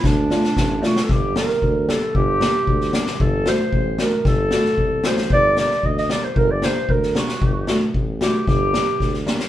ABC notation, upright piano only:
X:1
M:2/4
L:1/16
Q:1/4=114
K:Dm
V:1 name="Upright piano"
z2 [A,DF] z3 [A,DF] z | [K:Gm] z2 [B,DG] z3 [B,DG] z | z2 [B,DG] z3 [B,DG] z | z2 [A,D^F] z3 [A,DF] z |
z2 [A,D^F] z3 [A,DF] z | z2 [B,DG] z3 [B,DG] z | z2 [B,DG] z3 [B,DG] z | z2 [A,D^F] z3 [A,DF] z |
z2 [B,DG] z3 [B,DG] z |]